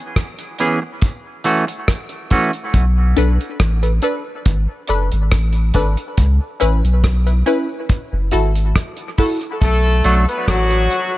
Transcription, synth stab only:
3.17 D4 A4 B4
3.83 A4 B4
4.02 D4 A4 B4
4.89 D4 A4 B4
5.74 D4 A4 B4
6.60 C#4 E4 B4
7.26 E4 B4
7.46 C#4 E4 B4
8.32 E4 F#4 A4
9.18 E4 F#4 A4

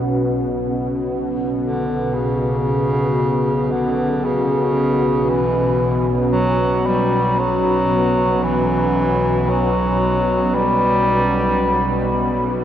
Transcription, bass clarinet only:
1.62 D3
2.14 C#3
3.71 D3
4.25 C#3
5.30 E3
6.32 F#3
6.87 G3
7.39 F#3
8.44 E3
9.49 F#3
10.55 G3

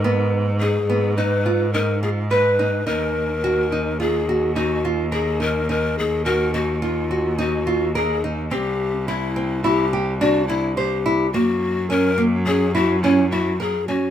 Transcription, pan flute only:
Already playing: A#4
0.61 G#4
1.17 B4
1.73 A#4
2.03 G#4
2.31 B4
2.87 A#4
4.00 G#4
4.55 F#4
5.13 G#4
5.41 A#4
5.70 A#4
5.99 G#4
6.25 A#4
6.54 F#4
6.83 F4
7.40 F#4
7.96 G#4
8.52 G4
9.08 E4
9.63 G4
10.21 F#4
10.48 E4
10.76 G4
11.33 F#4
11.90 A#4
12.47 G#4
12.75 F#4
13.03 E4
13.31 F#4
13.61 G#4
13.88 F#4

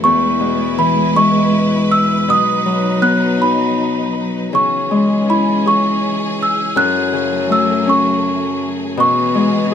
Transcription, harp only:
Already playing: A3
0.05 E2
0.40 B2
0.78 E3
1.16 G#3
2.28 B2
2.66 F#3
3.02 B3
3.41 D#4
4.53 C#3
4.91 G#3
5.29 E4
5.66 G#4
6.76 F#2
7.13 C#3
7.49 A3
7.87 C#4
8.97 B2
9.35 G#3

